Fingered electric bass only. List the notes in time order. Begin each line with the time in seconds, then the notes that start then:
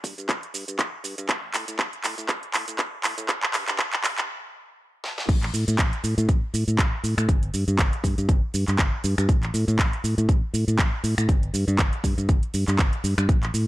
0.04 G2
0.18 G2
0.29 G1
0.54 G2
0.68 G2
0.79 G1
1.04 G2
1.18 G2
1.29 A1
1.54 A2
1.68 A2
1.79 A1
2.04 A2
2.18 A2
2.29 A1
2.54 A2
2.68 A2
2.79 A1
3.04 A2
3.18 A2
3.29 G1
3.54 G2
3.68 G2
3.79 G1
4.04 G2
4.18 G2
5.29 A1
5.54 A2
5.68 A2
5.79 A1
6.04 A2
6.18 A2
6.29 A1
6.54 A2
6.68 A2
6.79 A1
7.04 A2
7.18 A2
7.29 G1
7.54 G2
7.68 G2
7.79 G1
8.04 G2
8.18 G2
8.29 G1
8.54 G2
8.68 G2
8.79 G1
9.04 G2
9.18 G2
9.29 A1
9.54 A2
9.68 A2
9.79 A1
10.04 A2
10.18 A2
10.29 A1
10.54 A2
10.68 A2
10.79 A1
11.04 A2
11.18 A2
11.29 G1
11.54 G2
11.68 G2
11.79 G1
12.04 G2
12.18 G2
12.29 G1
12.54 G2
12.68 G2
12.79 G1
13.04 G2
13.18 G2
13.29 A1
13.54 A2